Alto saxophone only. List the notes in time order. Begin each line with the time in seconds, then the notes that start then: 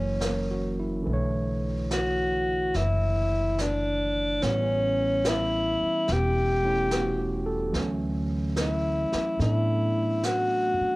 Already playing: C#4
1.93 F#4
2.77 E4
3.61 D4
4.44 C#4
5.29 E4
6.13 G4
8.61 E4
9.42 E4
10.25 F#4